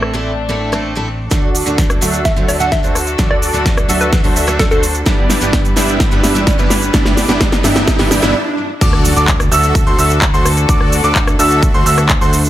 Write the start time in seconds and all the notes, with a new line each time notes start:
Already playing: A1 A2 A3 C4 D4 E4 A4
0.02 cross-stick
0.13 A2 A3 C4 E4 A4, open hi-hat
0.49 A2 A3 C4 E4 A4, open hi-hat
0.61 open hi-hat
0.72 A2 A3 C4 E4 A4, cross-stick
0.95 A2 A3 C4 E4 A4
1.08 open hi-hat
1.31 D2 D3 F#3 A3 D4 F#4 A4 D5, kick, snare, closed hi-hat, riser, shaker
1.55 open hi-hat, shaker
1.66 D2 D3 F#3 A3 D4 F#4 A4 D5, closed hi-hat, shaker
1.78 kick, snare, closed hi-hat, shaker
1.90 cross-stick, closed hi-hat, shaker
2.01 D2 D3 F#3 A3 D4 F#4 A4 E5, open hi-hat, shaker
2.13 closed hi-hat, shaker
2.25 E5, kick, snare, closed hi-hat, shaker
2.36 D2 D3 F#3 A3 D4 F#4 A4 C5, closed hi-hat
2.48 D2 F#4 A4 D5 E5, open hi-hat, shaker
2.60 D3 F#3 A3 D4 F#5, closed hi-hat, shaker
2.72 E5, kick, snare, closed hi-hat, shaker
2.83 D2 D3 F#3 A3 D4 F#4 A4 C5, shaker
2.95 cross-stick, open hi-hat, shaker
3.07 closed hi-hat, shaker
3.18 D2 D3 F#3 A3 D4 F#4 A4 D5, kick, snare, closed hi-hat, shaker
3.31 D5, cross-stick
3.42 open hi-hat, shaker
3.53 D2 D3 F#3 A3 D4 F#4 A4 D5, closed hi-hat, shaker
3.66 kick, snare, closed hi-hat, shaker
3.77 cross-stick, closed hi-hat, shaker
3.89 D2 D3 F#3 A3 D4 F#4 A4 E5, open hi-hat, shaker
4.01 B4, closed hi-hat, shaker
4.13 kick, snare, closed hi-hat, shaker
4.24 D2 D3 F#3 A3 D4 F#4 A4 C5, open hi-hat
4.36 D2 F#4 A4 E5, open hi-hat, shaker
4.47 D3 F#3 A3 D4, cross-stick, closed hi-hat, shaker
4.59 A4, kick, snare, closed hi-hat, shaker
4.71 D2 D3 F#3 A3 D4 F#4 A4 C5, shaker
4.83 open hi-hat, shaker
4.95 closed hi-hat, shaker
5.06 G1 G2 E3 G3 B3 D4 E4 G4 B4 D5, kick, snare, closed hi-hat, shaker
5.30 snare, open hi-hat, shaker
5.41 G1 G2 E3 G3 B3 D4 E4 G4 D5, closed hi-hat, shaker
5.53 kick, snare, closed hi-hat, shaker
5.65 closed hi-hat, shaker
5.76 G1 G2 E3 G3 B3 D4 E4 G4 E5, snare, open hi-hat, shaker
5.88 closed hi-hat, shaker
6.00 kick, snare, closed hi-hat, shaker
6.11 G1 G2 E3 G3 B3 D4 E4 G4 B4, closed hi-hat
6.24 G1 B3 D4 E4 G4 E5, snare, open hi-hat, shaker
6.35 G2 E3 G3 B3 D4, closed hi-hat, shaker
6.47 kick, snare, closed hi-hat, shaker
6.58 G1 G2 E3 G3 B3 D4 E4 G4 B4, shaker
6.70 snare, open hi-hat, shaker
6.82 closed hi-hat, shaker
6.93 G1 G2 E3 G3 B3 D4 E4 G4 D5, kick, snare, closed hi-hat, shaker
7.06 snare, shaker
7.17 snare, open hi-hat, shaker
7.28 G1 G2 E3 G3 B3 D4 E4 G4 D5, snare, closed hi-hat, shaker
7.41 kick, snare, closed hi-hat, shaker
7.52 snare, closed hi-hat, shaker
7.63 G1 G2 E3 G3 B3 D4 E4 G4 E5, snare, open hi-hat, shaker
7.76 snare, closed hi-hat, shaker
7.88 kick, snare, closed hi-hat, swell, shaker
7.99 G1 G2 E3 G3 B3 D4 E4 G4 B4, snare, open hi-hat
8.11 G1 B3 D4 E4 G4 G5, snare, open hi-hat, shaker
8.22 G1 G2 E3 G3 B3 D4 E4 G4 E5, snare, closed hi-hat, shaker
8.81 D2 D3 D4 F#4 A4 D5 D6, kick, closed hi-hat, crash, impact, shaker
8.93 cross-stick
9.05 open hi-hat, shaker
9.16 D2 F#4 A4 D5 D6, closed hi-hat, shaker
9.28 kick, clap, closed hi-hat, shaker
9.40 cross-stick, closed hi-hat, shaker
9.52 D2 F#4 A4 E5 E6, open hi-hat, shaker
9.63 closed hi-hat, shaker
9.75 kick, closed hi-hat, shaker
9.87 D2 F#4 A4 C5 C6, closed hi-hat
9.99 D2 F#4 A4 E5 E6, open hi-hat, shaker
10.10 closed hi-hat, shaker
10.22 kick, clap, closed hi-hat, shaker
10.34 D2 F#4 A4 C5 C6, shaker
10.45 cross-stick, open hi-hat, shaker
10.57 closed hi-hat, shaker
10.69 D2 F#4 A4 D5 D6, kick, closed hi-hat, shaker
10.81 cross-stick
10.92 open hi-hat, shaker
11.04 D2 F#4 A4 D5 D6, closed hi-hat, shaker
11.15 kick, clap, closed hi-hat, shaker
11.27 cross-stick, closed hi-hat, shaker
11.39 D2 F#4 A4 E5 E6, open hi-hat, shaker
11.51 closed hi-hat, shaker
11.63 kick, closed hi-hat, shaker
11.74 D2 F#4 A4 C5 C6, closed hi-hat
11.86 D2 F#4 A4 E5 E6, open hi-hat, shaker
11.98 cross-stick, closed hi-hat, shaker
12.09 kick, clap, closed hi-hat, shaker
12.21 D2 F#4 A4 C5 C6, shaker
12.33 open hi-hat, shaker
12.45 closed hi-hat, shaker